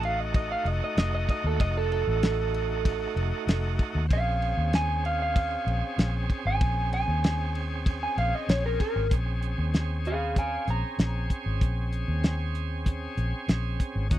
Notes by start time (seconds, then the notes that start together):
Already playing: A1 A3 D#4 F#4
0.03 F5, ride
0.20 D#5
0.34 D#5, kick, ride
0.52 F5
0.65 F1 D#5, ride
0.84 D#5
0.97 F1 D#5, snare, ride
1.15 D#5
1.29 D#5, kick, ride
1.44 D#2 A4
1.60 F1 D#5, kick, ride
1.77 A4
1.92 A4, ride
2.07 A1
2.23 snare, ride
2.54 ride
2.85 kick, ride
3.16 F1, ride
3.47 F1, snare, ride
3.79 kick, ride
3.95 D#2
4.09 A#1 C4 C#4 G#4, kick, ride
4.13 F5
4.42 ride
4.57 D#2
4.73 G#5, snare, ride
5.05 F5, ride
5.22 F5
5.36 kick, ride
5.67 A#1, ride
5.98 A#1, snare, ride
6.30 kick, ride
6.45 G#1 G#5
6.61 A#1, kick, ride
6.93 G#5, ride
7.08 D#2
7.24 snare, ride
7.55 ride
7.86 kick, ride
8.03 G#5
8.18 A#1 F5, ride
8.35 D#5
8.49 A#1 C#5, snare, ride
8.66 A#4
8.80 A#4, kick, ride
8.96 G#1
9.10 A#1 C4 C#4 G#4, kick, closed hi-hat
9.43 closed hi-hat
9.58 D#2
9.74 snare, closed hi-hat
10.05 G#4 F5, closed hi-hat
10.36 F5 G#5, kick, closed hi-hat
10.68 A#1 A#5, closed hi-hat
10.98 A#1, snare, closed hi-hat
11.30 kick, closed hi-hat
11.46 G#1
11.61 A#1, kick, closed hi-hat
11.93 closed hi-hat
12.08 D#2
12.24 snare, closed hi-hat
12.55 closed hi-hat
12.86 kick, closed hi-hat
13.17 A#1, closed hi-hat
13.48 A#1, snare, closed hi-hat
13.80 kick, closed hi-hat
13.95 G#1
14.10 D#2 C#4 D#4 F#4, kick, closed hi-hat